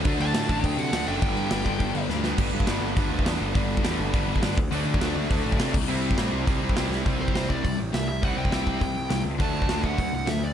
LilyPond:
<<
  \new Staff \with { instrumentName = "Lead electric guitar" } { \time 4/4 \key g \major \tempo 4 = 205 r8 a''4. g''8 fis''4 g''8~ | g''2. r4 | r1 | r1 |
r1 | r1 | r8 c''4 d''4 r8 e''8 e''8 | fis''8 g''8 g''2~ g''8 r8 |
a''4. fis''4 fis''8 e''8 d''8 | }
  \new Staff \with { instrumentName = "Distorted electric guitar" } { \clef bass \time 4/4 \key g \major <d a d'>4. <d a d'>4. <d a d'>4 | <g, d g>4. <g, d g>4. <g, d g>4 | <g, d g>4 <g, d g>4 <g, d g>4 <g, d g>4 | <g, d g>4 <g, d g>4 <g, d g>4 <g, d g>8 r8 |
<d a d'>4 <d a d'>4 <d a d'>4 <d a d'>8 r8 | <c g c'>4 <c g c'>4 <c g c'>4 <c g c'>4 | <c g c'>4 <c g c'>4 <c g>8 r8 <c g>8 r8 | <c g c'>4 <c g c'>4 <c g>8 r8 <c g>8 r8 |
<d a d'>4 <d a d'>4 <d a>8 r8 <d a>8 r8 | }
  \new Staff \with { instrumentName = "Distorted electric guitar" } { \clef bass \time 4/4 \key g \major <d a d'>4. <d a d'>2~ <d a d'>8 | <g, d g>4. <g, d g>2~ <g, d g>8 | r1 | r1 |
<d a d'>4. <d a d'>2 <c g c'>8~ | <c g c'>4 <c g c'>2~ <c g c'>8 r8 | <c g c'>2 <c g c'>2 | <c g c'>2 <c g c'>2 |
<d a d'>2 <d a d'>2 | }
  \new Staff \with { instrumentName = "Overdriven electric guitar" } { \clef bass \time 4/4 \key g \major <d fis a d'>2.~ <d fis a d'>8 <d fis a d'>8 | <g, d g b d'>2.~ <g, d g b d'>8 <g, d g b d'>8 | <g, d g b d'>4 <g, d g b d'>4 <g, d g b d'>4 <g, d g b d'>4 | <g, d g b d'>4 <g, d g b d'>4 <g, d g b d'>4 <g, d g b d'>8 r8 |
<d fis a d'>4 <d fis a d'>4 <d fis a d'>4 <d fis a d'>8 r8 | <c g c' e'>4 <c g c' e'>4 <c g c' e'>4 <c g c' e'>4 | <c g c'>4 <c g c'>4 <c g>8 r8 <c g>8 r8 | <c g c'>4 <c g c'>4 <c g>8 r8 <c g>8 r8 |
<d fis a>4 <d fis a>4 <d fis>8 r8 <d fis>8 r8 | }
  \new Staff \with { instrumentName = "Picked electric bass" } { \clef bass \time 4/4 \key g \major d,8 d,8 a,8 a,,8 d,8 c8 d,8 fis,,8 | g,,8 g,8 g,,8 g,,8 g,,8 g,,8 d,4 | g,,8 g,8 g,,8 g,,8 g,,8 d,8 e,8 g,,8 | g,,4 e,8 g,,8 g,,8 g,,8 g,,8 d,8 |
d,8 d8 d,8 d,8 d,8 a,,8 c8 c,8 | c,4 a,8 c,8 c,8 c,8 c,8 c,8 | c,8 c,8 c,8 c,8 c,8 a,,8 c,4 | c,8 c,8 c,4 c,8 c,8 c,8 cis,8 |
d,8 d,8 d,8 d,8 d,8 c,8 d,4 | }
  \new DrumStaff \with { instrumentName = "Drums" } \drummode { \time 4/4 <cymc bd>8 cymc8 <cymc sn>8 <cymc bd>8 <cymc bd>8 cymc8 <cymc sn>8 cymc8 | <cymc bd>8 cymc8 <cymc sn>8 <cymc bd>8 <cymc bd>8 cymc8 sn8 sn8 | <cymc bd>8. bd16 <hho sn>4 <hho bd>8. bd16 <hho sn>4 | <hho bd>8. bd16 <hho sn>4 <hho bd>8. bd16 <hho sn>8 bd8 |
hho8. bd16 <hho sn>4 <hho bd>8. bd16 <hho sn>8 <cymc bd>8 | r8. bd16 <hho sn>4 <hho bd>8. bd16 <hho sn>8 sn8 | <hho bd>8. bd16 <hho sn>8 bd8 <hho bd>4 <hho sn>4 | <hho bd>8. bd16 <hho sn>8 bd8 <hho bd>4 <hho sn>4 |
<hho bd>8. bd16 <hho sn>8 bd8 <hho bd>4 <hho sn>4 | }
>>